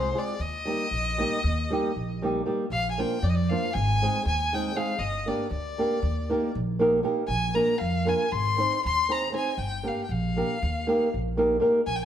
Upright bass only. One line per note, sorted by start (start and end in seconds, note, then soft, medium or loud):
0.00 0.10 C2 medium
0.39 0.71 D#2 medium
0.91 1.23 A#1 medium
1.44 1.75 D#2 loud
1.96 2.40 A#1 medium
2.70 3.01 A#1 medium
3.22 3.54 F2 loud
3.75 4.06 G#1 loud
4.26 4.70 D#2 medium
4.99 5.30 G1 medium
5.51 5.82 D2 medium
6.02 6.34 D#2 medium
6.55 6.99 A#1 medium
7.28 7.60 A#1 medium
7.81 8.12 F2 medium
8.32 8.64 G#1 medium
8.85 9.29 D#2 medium
9.58 9.89 G1 medium
10.09 10.40 A#1 medium
10.62 10.93 D#2 medium
11.14 11.57 A#1 medium
11.87 12.05 A#1 medium